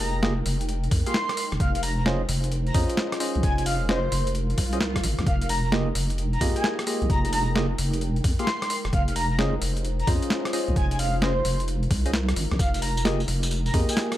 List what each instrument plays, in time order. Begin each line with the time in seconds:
Already playing: wobble bass F1, ambient pad G#3 D#4 A#4 G5, synth stab A#3 F4 G4 G#4 D#5
0.00 soft synth lead A#5, open hi-hat
0.23 synth stab A#3 F4 G4 G#4 D#5, snare
0.46 wobble bass F1, open hi-hat
0.61 closed hi-hat
0.69 closed hi-hat
0.84 closed hi-hat
0.91 wobble bass F2, kick, open hi-hat
1.06 synth stab A#3 F4 G4 G#4 F5, soft synth lead C6, closed hi-hat
1.14 snare
1.29 cross-stick, closed hi-hat
1.37 ambient pad F4 C5, open hi-hat
1.52 wobble bass F1, cross-stick, closed hi-hat
1.60 wobble bass F1, soft synth lead F5, kick, closed hi-hat
1.75 soft synth lead F5, closed hi-hat
1.83 soft synth lead A#5, open hi-hat
1.98 soft synth lead A#5
2.06 synth stab C#4 F4 G#4 C5 D#5, snare
2.29 wobble bass F1, open hi-hat
2.44 closed hi-hat
2.52 closed hi-hat
2.67 soft synth lead A#5, closed hi-hat
2.74 wobble bass F2, synth stab C#4 F4 G#4 C5 D#5, kick, open hi-hat
2.90 closed hi-hat
2.97 snare
3.12 cross-stick, closed hi-hat
3.20 synth stab C#4 F4 G#4 C5 D#5, ambient pad A#4, open hi-hat
3.35 wobble bass C2, closed hi-hat
3.43 wobble bass F1, soft synth lead G#5, kick, closed hi-hat
3.58 soft synth lead G#5, closed hi-hat
3.66 soft synth lead F5, open hi-hat
3.89 synth stab C#4 F4 G#4 C5 D#5, soft synth lead C5, snare
4.12 wobble bass F1, open hi-hat
4.27 closed hi-hat
4.35 closed hi-hat, swell
4.50 closed hi-hat
4.58 wobble bass C2, kick, open hi-hat
4.73 synth stab C#4 F4 G#4 C5 D#5, closed hi-hat
4.81 snare
4.96 kick, cross-stick, closed hi-hat
5.04 wobble bass G#1, open hi-hat
5.19 wobble bass C2, cross-stick, closed hi-hat
5.27 wobble bass F1, ambient pad G#3 D#4 G5, soft synth lead F5, kick, closed hi-hat
5.42 soft synth lead F5, closed hi-hat
5.49 soft synth lead A#5, open hi-hat
5.64 soft synth lead A#5
5.72 synth stab A#3 F4 G4 G#4 D#5, snare
5.95 wobble bass F1, open hi-hat
6.10 closed hi-hat
6.18 closed hi-hat
6.33 soft synth lead A#5, closed hi-hat
6.41 wobble bass F2, synth stab A#3 F4 G4 G#4 D#5, kick, open hi-hat
6.56 soft synth lead G#5, closed hi-hat
6.64 snare
6.79 cross-stick, closed hi-hat
6.87 synth stab A#3 F4 G4 G#4 D#5, open hi-hat
7.02 wobble bass C2, closed hi-hat
7.10 wobble bass F1, soft synth lead A#5, kick, closed hi-hat
7.25 soft synth lead A#5, closed hi-hat
7.33 soft synth lead A#5, open hi-hat
7.56 synth stab A#3 F4 G4 G#4 D#5, snare
7.78 wobble bass F1, open hi-hat
7.93 closed hi-hat
8.01 closed hi-hat
8.16 closed hi-hat
8.24 wobble bass F2, kick, open hi-hat
8.39 synth stab A#3 F4 G4 G#4 F5, soft synth lead C6, closed hi-hat
8.47 snare
8.62 cross-stick, closed hi-hat
8.70 ambient pad D#4 F4 C5, open hi-hat
8.85 wobble bass F1, cross-stick, closed hi-hat
8.93 wobble bass F1, soft synth lead F5, kick, closed hi-hat
9.08 soft synth lead F5, closed hi-hat
9.16 soft synth lead A#5, open hi-hat
9.31 soft synth lead A#5
9.39 synth stab C#4 F4 G#4 C5 D#5, snare
9.62 wobble bass F1, open hi-hat
9.77 closed hi-hat
9.85 closed hi-hat
10.00 soft synth lead A#5, closed hi-hat
10.07 wobble bass F2, synth stab C#4 F4 G#4 C5 D#5, kick, open hi-hat
10.22 closed hi-hat
10.30 snare
10.45 cross-stick, closed hi-hat
10.53 synth stab C#4 F4 G#4 C5 D#5, ambient pad A#4, open hi-hat
10.68 wobble bass C2, closed hi-hat
10.76 wobble bass F1, soft synth lead G#5, kick, closed hi-hat
10.91 soft synth lead G#5, closed hi-hat
10.99 soft synth lead F5, open hi-hat
11.22 synth stab C#4 F4 G#4 C5 D#5, soft synth lead C5, snare
11.45 wobble bass F1, open hi-hat
11.60 closed hi-hat
11.68 closed hi-hat
11.83 closed hi-hat
11.91 wobble bass C2, kick, open hi-hat
12.06 synth stab C#4 F4 G#4 C5 D#5, closed hi-hat
12.14 snare
12.29 cross-stick, closed hi-hat
12.36 wobble bass G#1, open hi-hat
12.51 wobble bass C2, cross-stick, closed hi-hat
12.59 wobble bass F1, ambient pad G#3 D#4 G5, soft synth lead F5, kick, closed hi-hat, tambourine
12.74 soft synth lead F5, closed hi-hat, tambourine
12.82 soft synth lead A#5, open hi-hat
12.97 soft synth lead A#5, tambourine
13.05 synth stab A#3 F4 G4 G#4 D#5, snare, tambourine
13.20 tambourine
13.28 wobble bass F1, open hi-hat
13.43 closed hi-hat, tambourine
13.51 closed hi-hat, tambourine
13.66 soft synth lead A#5, closed hi-hat, tambourine
13.74 wobble bass F2, synth stab A#3 F4 G4 G#4 D#5, kick, open hi-hat
13.89 soft synth lead G#5, closed hi-hat, tambourine
13.97 snare, tambourine
14.12 cross-stick, closed hi-hat, tambourine